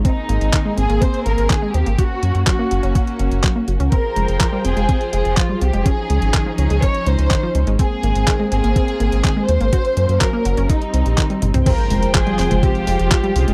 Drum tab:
CC |----------------|----------------|----------------|----------------|
HH |x-xxx-xxxxxxx-xx|x-xxx-xxxxxxx-xx|x-xxx-xxxxxxx-xx|x-xxx-xxxxxxx-xx|
CP |----x-------x---|----x-------x---|----x-------x---|----x-------x---|
T1 |----------------|----------------|----------------|----------------|
T2 |----------------|----------------|----------------|----------------|
CG |----------------|----------------|----------------|----------------|
BD |o---o---o---o---|o---o---o---o---|o---o---o---o---|o---o---o---o---|

CC |----------------|----------------|x---------------|
HH |x-xxx-xxxxxxx-xx|xxxxx-xxxxxxxxxx|xxoxxxoxxxoxxxox|
CP |----x-------x---|----x-------x---|----x-x-----x---|
T1 |----------------|--------------o-|----------------|
T2 |----------------|---------------o|----------------|
CG |----------------|----------------|-------o--------|
BD |o---o---o---o---|o---o---o---o---|o---o---o---o---|